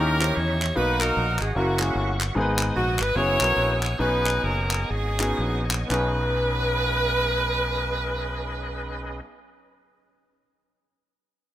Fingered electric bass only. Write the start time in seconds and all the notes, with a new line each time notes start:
Already playing: D#2
0.37 E2
0.77 B1
1.17 A#1
1.41 G#1
1.56 F#1
1.95 G1
2.36 G#1
2.76 A#1
3.00 G#1
3.16 F#1
3.41 B1
3.56 A#1
4.00 B1
4.44 F#1
4.90 G#1
5.39 A#1
5.90 B1